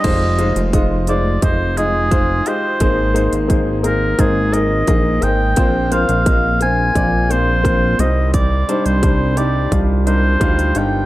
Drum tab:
CC |x---------------|----------------|----------------|----------------|
HH |x-xxx-x-x-x-x-x-|x-xxx-x-x-x-x-x-|x-xxx-x-x-x-x-x-|x-xxx-x-x-x-xxx-|
BD |o---o---o---o---|o---o---o---o---|o---o---o---o---|o---o---o---o---|